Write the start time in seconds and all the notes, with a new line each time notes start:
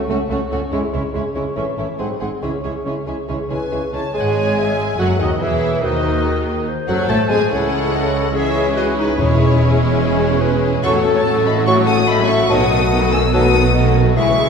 0.09 C#2 A3 C#4 F#4 C#5 F#5
0.29 C#2 A3 C#4 F#4 C#5 F#5
0.51 C#2 A3 C#4 F#4 C#5 F#5
0.72 C#2 G#3 C#4 E4 C#5 E5
0.93 C#2 G#3 C#4 E4 C#5 E5
1.14 C#2 G#3 C#4 E4 C#5 E5
1.35 C#2 G#3 C#4 E4 C#5 E5
1.56 A1 A2 E3 A3 C#4 E4 C#5 E5
1.77 A1 A2 A3 C#4 E4 C#5 E5
1.99 G#1 G#2 F#3 G#3 C4 D#4 G#4 C5 F#5
2.20 G#1 G#2 G#3 C4 D#4 G#4 C5 F#5
2.42 C#2 C#3 E3 G#3 C#4 E4 G#4 C#5 E5
2.62 C#2 C#3 G#3 C#4 E4 G#4 C#5 E5
2.84 C#2 C#3 G#3 C#4 E4 G#4 C#5 E5
3.06 C#2 C#3 G#3 C#4 E4 G#4 C#5 E5
3.28 C#2 C#3 E3 G#3 C#4 E4 G#4 C#5 E5
3.49 C#2 C#3 G#3 C#4 E4 G#4 B4 C#5 E5 G#5
3.71 C#2 C#3 G#3 C#4 E4 G#4 C#5 E5
3.93 C#2 C#3 G#3 C#4 E4 G#4 C#5 E5 A5
4.13 G#1 G#2 G#3 G#4 C#5 G#5
4.21 F#5
4.29 G#5
4.57 E5
4.98 F#1 F#2 F#3 F#4 A4 F#5
5.19 D#2 D#3 D#4 F#4 D#5
5.40 E1 E2 E3 E4 G#4 C#5 E5
5.83 D#2 D#3 D#4 F#4 C5 D#5
6.24 G#4
6.68 C5
6.88 F#1 F#2 F#3 F#4 A4 F#5
7.08 A1 A2 A3 A4 C#5 A5
7.28 G#1 G#2 G#3 G#4 C5 G#5
7.49 C#2 E3 G#3 C#4 E4 G#4 A4 C#5 F#5
7.94 D#5
8.34 E3 G#3 C#4 E4 G#4 C#5 E5
8.76 F#4 D#5
8.97 D#4 B4
9.18 E1 E2 G#3 C#4 E4 G#4 C#5
9.59 E5
10.01 C#5
10.41 B4
10.83 A1 A2 F#3 A3 C#4 F#4 A4 C#5 F#5 C#6
10.93 F#3 A3 F#4 C#5
11.04 A3 C#4 A4
11.15 F#3 A3 F#4 C#5 A5
11.24 A3 C#4 A4
11.34 F#3 A3 F#4 C#5
11.45 A3 C#4 A4 D#5 B5
11.56 F#3 A3 F#4 C#5
11.66 F#3 A3 C#4 F#4 A4 C#5 F#5 C#6
11.77 F#3 A3 F#4 C#5
11.87 A3 C#4 A4 F#5 D#6
11.97 F#3 A3 F#4 C#5
12.08 A3 C#4 A4 D#5 E5 B5
12.19 F#3 A3 F#4 C#5
12.28 A3 C#4 A4 E5 C#6
12.39 F#3 A3 F#4 C#5
12.49 B1 B2 D#3 F#3 A3 B3 D#4 F#4 A4 D#5 F#5 D#6
12.61 F#3 A3 F#4 B4
12.71 D#3 B3 D#4 A4
12.81 F#3 A3 F#4 B4
12.91 D#3 B3 D#4 A4
13.01 F#3 A3 F#4 B4
13.12 D#3 B3 D#4 A4 G#5 E6
13.20 F#3 A3 F#4 B4
13.32 D#3 F#3 A3 B3 D#4 F#4 A4 B4 F#5 D#6
13.43 F#3 A3 F#4 B4
13.54 D#3 B3 D#4 A4
13.64 F#3 A3 F#4 B4
13.74 D#3 B3 D#4 A4 D#5
13.86 F#3 A3 F#4 B4
13.96 D#3 B3 D#4 A4
14.06 F#3 A3 F#4 B4
14.16 C#2 C#3 E3 G#3 E4 G#4 E5 C#6
14.27 E3 C#4 E4
14.37 G#3 E4 G#4